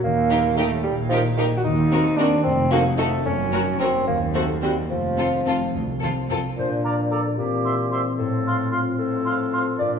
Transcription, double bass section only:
0.04 D#2
0.85 A#1
1.64 D#2
2.44 F1
3.25 F#1
4.08 D#2
4.90 F1
5.74 C2

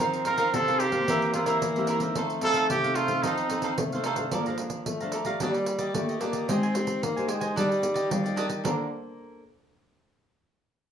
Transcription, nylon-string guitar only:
Already playing: C4 D#4 A#4
0.00 F3
0.26 C4 D#4 A#4
0.54 C3
0.68 C4 D#4 A#4
0.92 A#3 C4 G4
1.08 E3
1.34 A#3 C4 G4
1.62 E3
1.77 A#3 C4 G4
2.01 C4 D#4 A4
2.16 F3
2.42 C4 D#4 A4
2.70 C3
2.84 C4 D#4 A4
3.09 C4 D#4 A4
3.25 F3
3.51 C4 D#4 A4
3.79 C3
3.94 C4 D#4 A4
4.18 D4 A4 C5
4.34 A#3
4.48 D4 A4 C5
4.59 D4 A4 C5
4.87 F3
5.02 D4 A4 C5
5.26 F4 G4 D5
5.42 A#3
5.95 A#3 F4 G4 D5
6.22 F4 G4 D5
6.49 G#3 D#4 G4 C5
6.76 D#4 G4 C5
7.03 D#3
7.17 D#4 G4 C5
7.56 G3 D#4 A#4 D5
7.82 D#4 A#4 D5
8.11 G3
8.25 D#4 A#4 D5
8.64 A#3 D4 A4 C5

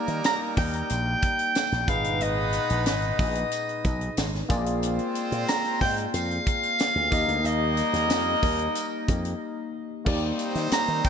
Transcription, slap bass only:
0.08 D#3
0.57 D#2
0.90 A#1
1.72 A#1
1.88 G#1
2.05 G1
2.21 G#1
2.70 A#1
2.86 G#1
3.19 A#1
3.85 B1
4.17 G#1
4.50 A#1
5.32 A#2
5.81 G#2
6.14 F2
6.96 D2
7.12 D#2
7.28 D2
7.44 D#2
7.93 D#2
8.10 F2
8.43 D#2
9.09 F2
10.06 D#2
10.55 D#3
10.72 muted slap bass stroke
10.88 D#3

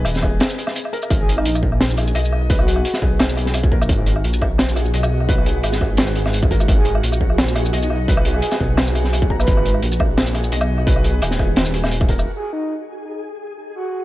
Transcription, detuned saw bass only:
0.06 D#1
1.11 G#1
1.46 A#1
2.15 B1
3.02 B1
3.72 A#1
3.89 G#1
4.25 A#1
4.94 B1
5.64 G#1
6.68 G#1
7.03 A#1
7.73 B1
8.61 B1
9.30 A#1
9.48 G#1
9.83 A#1
10.52 B1
11.22 D#1

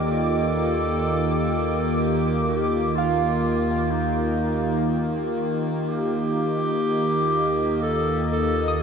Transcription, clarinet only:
0.06 A4
2.00 G4
2.48 G4
2.95 F4
3.91 D#4
5.88 G4
7.82 A4
8.32 A4

